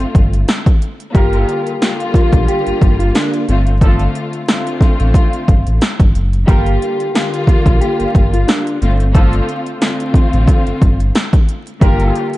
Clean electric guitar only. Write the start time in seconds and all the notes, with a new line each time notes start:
1.15 G4
2.14 F4
2.48 G4
2.99 F4
3.16 D4
6.47 G4
7.48 F4
7.81 G4
8.33 F4
8.47 D4
11.82 G4